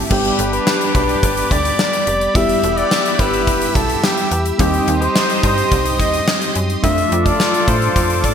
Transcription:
0.10 fm bass G1, fm electric piano G3 B3 D4 G4, horn section D4 G4 B4, flugelhorn G4, analog synth pad G4 D5 B5 D6, kick, crash
0.25 closed hi-hat
0.39 fm bass G1, closed hi-hat
0.53 flugelhorn B4, closed hi-hat
0.67 snare, tambourine
0.81 closed hi-hat
0.95 fm bass B1, flugelhorn B4, kick, closed hi-hat
1.09 closed hi-hat
1.23 fm bass G1, kick, closed hi-hat
1.37 closed hi-hat
1.51 fm bass D2, flugelhorn D5, kick, closed hi-hat
1.65 closed hi-hat
1.79 snare, tambourine
1.93 closed hi-hat
2.07 fm bass F1, closed hi-hat
2.21 closed hi-hat
2.34 fm bass E1, fm electric piano G3 B3 E4 G4, horn section B3 E4 G4, analog synth pad G4 E5 E6, flugelhorn E5, kick, closed hi-hat
2.49 closed hi-hat
2.63 fm bass E1, closed hi-hat
2.77 flugelhorn D5, closed hi-hat
2.91 snare, tambourine
3.06 closed hi-hat
3.19 fm bass G1, flugelhorn B4, kick, closed hi-hat
3.33 closed hi-hat
3.47 fm bass E1, kick, closed hi-hat
3.62 closed hi-hat
3.75 fm bass B1, flugelhorn A4, kick, closed hi-hat
3.89 closed hi-hat
4.03 flugelhorn G4, snare, tambourine
4.17 closed hi-hat
4.31 fm bass E2, closed hi-hat
4.46 closed hi-hat
4.58 fm bass D#2, fm electric piano G3 C4 D#4 G4, horn section D#4 G4 C5, analog synth pad G4 D#5 C6 D#6, flugelhorn G4, kick, closed hi-hat
4.74 closed hi-hat
4.88 fm bass D#2, closed hi-hat
5.02 flugelhorn C5, closed hi-hat
5.16 snare, tambourine
5.30 closed hi-hat
5.43 fm bass G2, flugelhorn C5, kick, closed hi-hat
5.58 closed hi-hat
5.72 fm bass C2, kick, closed hi-hat
5.86 closed hi-hat
6.00 fm bass D#2, flugelhorn D#5, kick, closed hi-hat
6.14 closed hi-hat
6.27 snare, tambourine
6.42 closed hi-hat
6.55 fm bass F#2, closed hi-hat
6.70 closed hi-hat
6.82 fm bass F2, fm electric piano F3 A3 D4 F4, horn section D4 F4 A4, analog synth pad F4 A4 D5 D6, flugelhorn E5, kick, closed hi-hat
6.98 closed hi-hat
7.12 fm bass F2, closed hi-hat
7.26 flugelhorn D5, kick, closed hi-hat
7.40 snare, tambourine
7.54 closed hi-hat
7.68 fm bass A2, flugelhorn C5, kick, closed hi-hat
7.82 closed hi-hat
7.96 fm bass F2, kick, closed hi-hat
8.10 closed hi-hat
8.24 fm bass A2, flugelhorn D5, kick, closed hi-hat

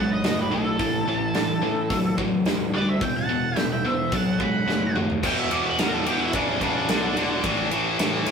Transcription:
Already playing: picked electric bass B1, distorted electric guitar B2 G#3
0.00 lead electric guitar A5
0.10 viola B4, lead electric guitar D#5
0.23 picked electric bass F#1, distorted electric guitar B2 A3, viola B4, lead electric guitar D#5, snare, open hi-hat
0.39 viola G4, lead electric guitar B4
0.52 picked electric bass B1, distorted electric guitar B2 A3, viola E4, lead electric guitar A4
0.79 picked electric bass A1, distorted electric guitar A2 E3, kick, open hi-hat
1.06 picked electric bass A1, distorted electric guitar A2 E3
1.34 picked electric bass A1, distorted electric guitar A2 E3, snare, open hi-hat
1.62 distorted electric guitar A2 E3, picked electric bass A2
1.90 picked electric bass A1, distorted electric guitar A2 F#3, kick, open hi-hat
2.18 picked electric bass A1, distorted electric guitar A2 F#3, kick
2.45 picked electric bass E1, distorted electric guitar A2 G3, snare, open hi-hat
2.74 picked electric bass D2, distorted electric guitar A2 G3, viola B4, lead electric guitar D5
2.88 viola C5, lead electric guitar E5
3.01 picked electric bass E1, distorted electric guitar E2 B2, viola E5, lead electric guitar G5, kick, open hi-hat
3.16 viola F#5, lead electric guitar A5
3.29 picked electric bass E1, distorted electric guitar E2 B2
3.56 picked electric bass E1, distorted electric guitar E2 B2, lead electric guitar G5, snare, open hi-hat
3.72 viola E5, lead electric guitar G5
3.84 picked electric bass E2, distorted electric guitar E2 B2, viola C5, lead electric guitar E5
4.12 picked electric bass B1, distorted electric guitar B2 F#3, viola F#5, lead electric guitar A5, kick, open hi-hat
4.40 picked electric bass B1, distorted electric guitar B2 G#3, viola F#5, lead electric guitar B5, kick
4.68 picked electric bass F#1, distorted electric guitar B2 A3, snare
4.95 picked electric bass D#2, distorted electric guitar B2 A3, mid tom
5.10 floor tom
5.23 picked electric bass E1, distorted electric guitar E2 B2, lead electric guitar G5, kick, crash
5.38 lead electric guitar E5
5.51 picked electric bass E1, distorted electric guitar E2 B2, lead electric guitar D5, ride
5.65 lead electric guitar B4
5.78 picked electric bass E1, distorted electric guitar E2 B2, lead electric guitar A#4, snare, ride
5.93 lead electric guitar A4
6.06 picked electric bass E2, distorted electric guitar E2 B2, lead electric guitar G4, ride
6.20 lead electric guitar E4
6.33 picked electric bass E1, distorted electric guitar E2 C#3, lead electric guitar D4, kick, ride
6.61 picked electric bass E1, distorted electric guitar E2 C#3, lead electric guitar D4, kick, ride
6.89 picked electric bass B1, distorted electric guitar E2 D3, snare, ride
7.16 picked electric bass E1, distorted electric guitar E2 D3, ride
7.44 picked electric bass A1, distorted electric guitar A2 E3, kick, ride
7.71 picked electric bass A1, distorted electric guitar A2 E3, ride
7.99 picked electric bass A1, distorted electric guitar A2 E3, snare, ride
8.26 distorted electric guitar A2 E3, picked electric bass A2, ride

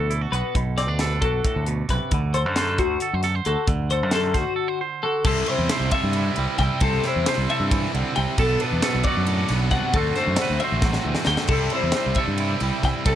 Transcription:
Already playing: clean electric guitar B2 D4 A4
0.00 fingered electric bass D2
0.10 clean electric guitar E4, closed hi-hat
0.21 clean electric guitar F#4
0.32 fingered electric bass B1, clean electric guitar B3 B4, closed hi-hat
0.55 fingered electric bass B1, clean electric guitar B2, kick, closed hi-hat
0.78 clean electric guitar C4 D5, snare, closed hi-hat
0.88 fingered electric bass D2, clean electric guitar D4
0.99 clean electric guitar A4 B4, snare, closed hi-hat
1.22 fingered electric bass B1, clean electric guitar F#4 A4, kick, closed hi-hat
1.45 clean electric guitar A2, kick, closed hi-hat
1.56 fingered electric bass D2
1.66 clean electric guitar B2, closed hi-hat
1.89 fingered electric bass B1, clean electric guitar C3 B4, kick, snare, closed hi-hat
2.11 fingered electric bass D2, clean electric guitar D3, kick, closed hi-hat
2.34 clean electric guitar A4 C5, closed hi-hat
2.46 fingered electric bass F#2
2.56 clean electric guitar A4 C5, snare, closed hi-hat
2.78 fingered electric bass D2, clean electric guitar F#4 C5, kick, closed hi-hat
3.00 clean electric guitar A4, closed hi-hat
3.13 fingered electric bass F#2, clean electric guitar C5
3.23 clean electric guitar A4, snare, closed hi-hat
3.35 clean electric guitar C5
3.45 fingered electric bass D2, clean electric guitar F#4 A4, closed hi-hat
3.67 fingered electric bass D2, clean electric guitar D3, kick, closed hi-hat
3.90 clean electric guitar A4 C5, closed hi-hat
4.03 fingered electric bass F#2
4.11 clean electric guitar A4 C5, snare, closed hi-hat
4.34 fingered electric bass D2, clean electric guitar F#4 C5, kick, snare, closed hi-hat
4.56 clean electric guitar A4
4.68 clean electric guitar C5
4.81 clean electric guitar C5
5.03 clean electric guitar F#4 A4
5.25 fingered electric bass C2, overdriven electric guitar C3 G3 C4 E4, clean electric guitar C3 A4 C5, kick, crash
5.46 overdriven electric guitar G3 C4 E4, clean electric guitar E4 C5, ride
5.58 fingered electric bass E2
5.69 overdriven electric guitar C3 G3 C4 E4, clean electric guitar C5, snare, ride
5.80 fingered electric bass C2
5.91 overdriven electric guitar G3 C4 E4, clean electric guitar A4 E5, kick, ride
6.03 fingered electric bass G2
6.13 clean electric guitar E4, ride
6.36 fingered electric bass C2, clean electric guitar G3, overdriven electric guitar G3 C4 E4, ride
6.58 fingered electric bass C2, overdriven electric guitar C3 G3 C4 E4, clean electric guitar E4 G5, kick, snare, ride
6.80 fingered electric bass C2, overdriven electric guitar C3 G3 C4 E4, clean electric guitar C3 A4 C5, kick, ride
7.03 overdriven electric guitar G3 C4 E4, clean electric guitar E4 C5, snare, ride
7.16 fingered electric bass E2
7.26 overdriven electric guitar C3 G3 C4 E4, clean electric guitar C5, snare, ride
7.38 fingered electric bass C2
7.49 overdriven electric guitar G3 C4 E4, clean electric guitar A4 E5, ride
7.60 fingered electric bass G2
7.71 clean electric guitar E3, kick, ride
7.94 fingered electric bass C2, clean electric guitar D3, overdriven electric guitar G3 C4 E4, ride
8.16 fingered electric bass C2, overdriven electric guitar C3 G3 C4 E4, clean electric guitar C3 G5, ride
8.37 fingered electric bass B1, overdriven electric guitar B2 F#3 B3 D4, clean electric guitar B2 A4, kick, crash
8.60 overdriven electric guitar F#3 B3 D4, clean electric guitar D4 B4, ride
8.73 fingered electric bass E2
8.81 overdriven electric guitar B2 F#3 B3 D4, clean electric guitar A4, snare, ride
8.95 fingered electric bass B1
9.03 overdriven electric guitar F#3 B3 D4, clean electric guitar F#4 D5, kick, ride
9.17 fingered electric bass F#2
9.27 clean electric guitar A2, ride
9.49 fingered electric bass B1, clean electric guitar B2, overdriven electric guitar B3 D4, snare, ride
9.53 overdriven electric guitar F#3
9.71 fingered electric bass C2, overdriven electric guitar B2 F#3 B3, clean electric guitar C3 F#5, kick, snare, ride
9.75 overdriven electric guitar D4
9.93 fingered electric bass D2, overdriven electric guitar D3 A3 C4 F#4, clean electric guitar D3 F#4 A4, kick, ride
9.98 clean electric guitar C5
10.15 overdriven electric guitar A3 C4 F#4, clean electric guitar A4 C5, snare, ride
10.27 fingered electric bass F#2
10.36 overdriven electric guitar D3 A3 C4 F#4, snare, ride
10.42 clean electric guitar B4
10.50 fingered electric bass D2
10.60 overdriven electric guitar A3 C4 F#4, clean electric guitar E5, ride
10.64 clean electric guitar C5
10.72 fingered electric bass A1
10.82 clean electric guitar F#3, kick, snare
10.93 snare
11.04 fingered electric bass D2, clean electric guitar E3, overdriven electric guitar A3 C4 F#4
11.15 snare
11.25 fingered electric bass D2, overdriven electric guitar D3 A3 C4, clean electric guitar G5, snare
11.29 clean electric guitar D3, overdriven electric guitar F#4
11.37 snare
11.47 fingered electric bass C2, clean electric guitar C3 A4, overdriven electric guitar C3 G3 C4, kick, crash
11.52 clean electric guitar G3 E4 A4 C5, overdriven electric guitar E4
11.70 overdriven electric guitar C4 E4, clean electric guitar C5, ride
11.74 overdriven electric guitar G3, clean electric guitar E4
11.83 fingered electric bass E2
11.92 overdriven electric guitar C3 G3 C4, snare, ride
11.96 overdriven electric guitar E4, clean electric guitar C5
12.06 fingered electric bass C2
12.15 overdriven electric guitar C4 E4, clean electric guitar A4 E5, kick, ride
12.20 overdriven electric guitar G3
12.28 fingered electric bass G2
12.38 clean electric guitar E4, ride
12.60 fingered electric bass C2, overdriven electric guitar G3 C4 E4, clean electric guitar G3, ride
12.83 fingered electric bass C2, overdriven electric guitar C3 G3 C4 E4, clean electric guitar E4 G5, kick, snare, ride
13.05 fingered electric bass C2, overdriven electric guitar C3 G3 C4 E4, clean electric guitar C3 A4, kick, ride

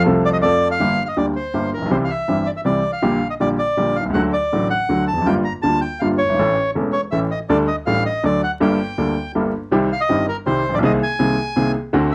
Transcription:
0.04 grand piano C2 C3 F3 A3 C4 A4
0.26 bandoneon D5
0.33 bandoneon D#5
0.41 grand piano F2 F3 A3 C4 A4, bandoneon D5
0.71 bandoneon F5
0.80 grand piano G1 G2 D3 G3 A#3 G4
1.06 bandoneon D#5 F5
1.17 grand piano D2 D3 G3 A#3 G4, bandoneon D5
1.36 bandoneon C5
1.54 grand piano G1 G2 D3 G3 A#3 G4
1.74 grand piano A1, bandoneon A#4
1.82 grand piano A#1
1.86 grand piano B1
1.90 grand piano C2 C3 E3 G3 C4 G4, bandoneon C5
2.05 bandoneon F5
2.10 bandoneon E5
2.28 grand piano G1 G2 E3 G3 C4 G4
2.46 bandoneon D5
2.57 bandoneon E5
2.65 grand piano C2 C3 E3 G3 C4 G4, bandoneon D5
2.93 bandoneon F5
3.02 grand piano A#1 A#2 D3 G3 A#3 G4
3.30 bandoneon D#5
3.40 grand piano A#1 A#2 D3 G3 A#3 G4, bandoneon D5
3.58 bandoneon D5
3.77 grand piano A#1 A#2 D3 G3 A#3 G4
3.96 bandoneon F5
4.01 grand piano B1
4.06 grand piano C2
4.10 grand piano C#2, bandoneon F#5
4.14 grand piano D2 D3 F#3 A3 F#4
4.33 bandoneon D5
4.52 grand piano A1 A2 D3 F#3 A3 F#4
4.70 bandoneon F#5
4.89 grand piano D2 D3 F#3 A3 F#4
5.08 bandoneon A5
5.13 grand piano E2
5.18 grand piano F2
5.22 grand piano F#2
5.26 grand piano G1 G2 D3 G3 A#3 F4, bandoneon G5
5.45 bandoneon A#5
5.62 grand piano D2 D3 G3 A#3 F4, bandoneon A5
5.81 bandoneon G5
6.00 grand piano G1 G2 D3 G3 A#3 F4, bandoneon F5
6.18 bandoneon C#5
6.25 grand piano F#1
6.29 grand piano G1
6.34 grand piano G#1
6.39 grand piano A1 A2 E3 A3 C#4 A4
6.75 grand piano E1 E2 E3 A3 C#4 A4
6.92 bandoneon C#5
7.11 grand piano A1 A2 E3 A3 C#4 A4, bandoneon E5
7.31 bandoneon D#5
7.49 grand piano D2 D3 G3 A3 D4 A4, bandoneon D5
7.68 bandoneon D#5
7.86 grand piano A1 A2 G3 A3 D4 A4, bandoneon F5
8.06 bandoneon D#5
8.23 grand piano D2 D3 F#3 A3 D4 A4, bandoneon D5
8.43 bandoneon F#5
8.60 grand piano G1 G2 G3 A#3 D4 A4, bandoneon G5
8.98 grand piano D2 D3 G3 A#3 D4 A4
9.35 grand piano G1 G2 G3 A#3 D4 A4
9.71 grand piano C2 C3 D#3 G3 C4 G4
9.93 bandoneon F5
10.01 bandoneon D#5
10.09 grand piano G1 G2 D#3 G3 C4 G4
10.29 bandoneon A#4
10.46 grand piano C2 C3 D#3 G3 C4 G4, bandoneon C5
10.69 grand piano A1
10.74 grand piano A#1, bandoneon D5
10.78 grand piano B1
10.83 grand piano C2 C3 D#3 A#3 C4 G#4, bandoneon D#5
11.03 bandoneon G#5
11.19 grand piano C2 C3 D#3 A#3 C4 G#4
11.56 grand piano C2 C3 D#3 A#3 C4 G#4
11.93 grand piano D2 D3 A3 C4 F#4

